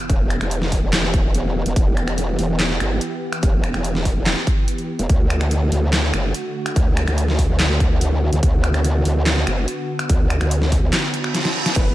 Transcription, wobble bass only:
0.10 E1
0.41 E1
0.83 E1
1.66 E1
1.76 E1
2.39 E1
2.80 G1
3.43 E1
3.74 E1
4.16 E1
4.99 E1
5.10 D2
5.72 D2
6.14 F#1
6.76 D2
7.07 D2
7.49 D2
8.32 D2
8.43 D2
9.05 D2
9.47 F#1
10.10 D2
10.41 D2
10.83 D2
11.76 E1

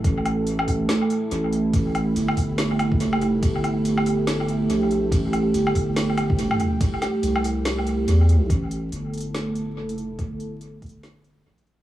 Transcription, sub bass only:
0.04 A1
1.32 A1
1.74 A1
2.16 G1
3.04 F#1
3.29 F1
3.43 G1
4.70 A#1
5.12 A1
5.54 G1
7.23 C2
8.08 E2
8.50 A1
8.92 G1
9.80 F#1
10.05 F1
10.19 G1
11.46 A#1

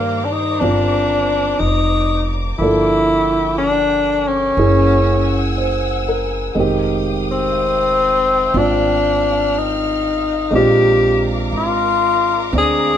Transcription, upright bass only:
Already playing: G2
0.62 G1
1.60 F1
2.59 G1
4.57 F#1
6.55 F1
8.54 G#1
10.51 A#1
11.52 G#1
12.53 D2

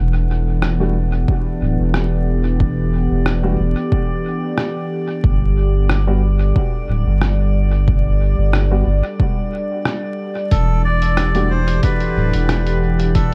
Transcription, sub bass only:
Already playing: E1
1.61 D1
1.79 E1
3.11 E1
3.59 E1
5.24 G1
6.88 D1
7.06 G1
8.38 G1
8.86 G1
10.52 E1
12.16 D1
12.34 E1

